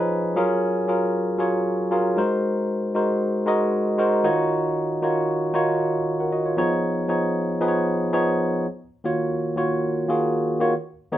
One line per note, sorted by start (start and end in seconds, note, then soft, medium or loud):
0.00 0.38 F3 medium
0.00 0.36 C#4 medium
0.00 0.38 D#4 medium
0.00 0.37 G#4 medium
0.00 0.38 B4 loud
0.36 0.77 F#3 medium
0.36 0.78 C#4 medium
0.36 0.78 F4 medium
0.36 0.78 G#4 medium
0.36 0.78 A#4 loud
0.88 1.29 F#3 medium
0.88 1.29 C#4 medium
0.88 1.30 F4 medium
0.88 1.30 G#4 medium
0.88 1.30 A#4 medium
1.38 1.81 F#3 medium
1.38 1.81 C#4 medium
1.38 1.81 F4 medium
1.38 1.81 G#4 medium
1.38 1.81 C#5 loud
1.91 2.17 F#3 medium
1.91 2.17 C#4 medium
1.91 2.17 F4 medium
1.91 2.18 G#4 medium
1.91 2.17 A#4 medium
2.17 2.80 G#3 medium
2.17 2.80 D#4 medium
2.17 2.80 F#4 medium
2.17 2.80 A#4 medium
2.17 2.81 C5 loud
2.95 3.36 G#3 medium
2.95 3.37 D#4 medium
2.95 3.37 F#4 medium
2.95 3.37 A#4 medium
2.95 3.37 C5 medium
3.46 3.88 G#3 medium
3.46 3.88 D#4 medium
3.46 3.89 F#4 medium
3.46 3.89 A#4 medium
3.46 3.89 D#5 loud
3.98 4.24 G#3 medium
3.98 4.23 D#4 medium
3.98 4.24 F#4 medium
3.98 4.25 A#4 medium
3.98 4.25 C5 medium
4.24 4.87 D#3 medium
4.24 4.87 D#4 medium
4.24 4.87 F4 medium
4.24 4.88 F#4 medium
4.24 4.88 C#5 loud
5.02 5.44 D#3 medium
5.02 5.44 D#4 medium
5.02 5.44 F4 medium
5.02 5.44 F#4 medium
5.02 5.45 C#5 medium
5.54 5.96 D#3 medium
5.54 5.96 D#4 medium
5.54 5.96 F4 medium
5.54 5.96 F#4 medium
5.54 5.96 C#5 medium
6.20 6.32 A#4 medium
6.20 6.32 F#5 medium
6.32 6.45 F#4 medium
6.32 6.45 D#5 medium
6.46 6.71 F4 soft
6.46 6.57 C#5 medium
6.57 6.99 F3 medium
6.57 6.99 B3 medium
6.57 6.99 D#4 medium
6.57 7.00 G#4 medium
6.57 7.00 C#5 loud
7.08 7.51 F3 medium
7.08 7.51 B3 medium
7.08 7.51 D#4 medium
7.08 7.51 G#4 medium
7.08 7.51 C#5 medium
7.60 8.03 F3 medium
7.60 8.03 B3 medium
7.60 8.03 D#4 medium
7.60 8.03 G#4 medium
7.60 7.68 B4 medium
7.68 8.06 C#5 medium
8.12 8.54 F3 medium
8.12 8.55 B3 medium
8.12 8.55 D#4 medium
8.12 8.55 G#4 medium
8.12 8.55 C#5 loud
9.04 9.45 D#3 medium
9.04 9.45 A#3 medium
9.04 9.45 F4 medium
9.04 9.45 F#4 medium
9.04 9.46 C#5 medium
9.56 9.97 D#3 medium
9.56 9.97 A#3 medium
9.56 9.97 F4 medium
9.56 9.97 F#4 medium
9.56 9.98 C#5 medium
10.08 10.49 D#3 medium
10.08 10.49 A#3 medium
10.08 10.49 F4 medium
10.08 10.49 F#4 medium
10.08 10.49 G#4 medium
10.60 10.72 D#3 medium
10.60 10.72 A#3 medium
10.60 10.73 F4 medium
10.60 10.73 F#4 medium
10.60 10.73 C#5 medium
11.12 11.18 D#3 medium
11.12 11.18 B3 medium
11.12 11.18 D#4 medium
11.12 11.18 G#4 medium
11.12 11.18 C#5 loud